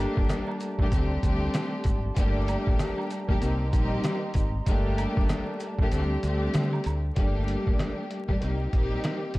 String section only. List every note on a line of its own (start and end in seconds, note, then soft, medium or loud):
0.00 0.69 G3 loud
0.00 0.69 A3 loud
0.00 0.69 A#3 medium
0.00 0.70 D4 loud
0.00 0.70 G4 loud
0.80 0.90 G3 medium
0.80 0.90 A3 medium
0.80 0.93 A#3 medium
0.80 0.91 D4 medium
0.80 0.92 G4 loud
0.91 1.21 G3 loud
0.91 1.21 A3 medium
0.91 1.21 C4 medium
0.91 1.21 D4 medium
0.91 1.22 G4 loud
1.22 1.96 G3 loud
1.22 1.97 A3 loud
1.22 1.97 C4 medium
1.22 1.97 D4 medium
1.22 1.97 G4 loud
2.16 3.18 G3 loud
2.16 3.18 A3 medium
2.16 3.19 A#3 loud
2.16 3.19 D4 loud
2.16 3.19 G4 loud
3.27 3.39 G3 loud
3.27 3.41 A3 medium
3.27 3.40 A#3 medium
3.27 3.42 D4 medium
3.27 3.41 G4 loud
3.40 3.69 G3 loud
3.40 3.69 A#3 medium
3.40 3.70 C4 medium
3.40 3.70 D#4 medium
3.40 3.70 G4 medium
3.70 4.45 G3 loud
3.70 4.45 A#3 loud
3.70 4.46 C4 medium
3.70 4.46 D#4 loud
3.70 4.46 G4 loud
4.67 5.69 G3 loud
4.67 5.69 A3 loud
4.67 5.69 A#3 medium
4.67 5.70 D4 loud
4.67 5.70 G4 loud
5.80 5.90 G3 loud
5.80 5.90 A3 medium
5.80 5.93 A#3 medium
5.80 5.91 D4 medium
5.80 5.92 G4 loud
5.91 6.21 G3 loud
5.91 6.21 A3 medium
5.91 6.21 C4 medium
5.91 6.21 D4 medium
5.91 6.22 G4 loud
6.22 6.96 G3 loud
6.22 6.97 A3 loud
6.22 6.97 C4 medium
6.22 6.97 D4 medium
6.22 6.97 G4 loud
7.16 8.18 G3 loud
7.16 8.18 A3 medium
7.16 8.19 A#3 medium
7.16 8.19 D4 loud
7.16 8.19 G4 loud
8.27 8.39 G3 medium
8.27 8.41 A3 medium
8.27 8.39 A#3 medium
8.27 8.42 D4 medium
8.27 8.41 G4 loud
8.40 8.69 G3 medium
8.40 8.69 A#3 medium
8.40 8.70 C4 medium
8.40 8.70 D#4 medium
8.40 8.70 G4 medium
8.70 9.39 G3 loud
8.70 9.39 A#3 medium
8.70 9.39 C4 medium
8.70 9.39 D#4 loud
8.70 9.39 G4 loud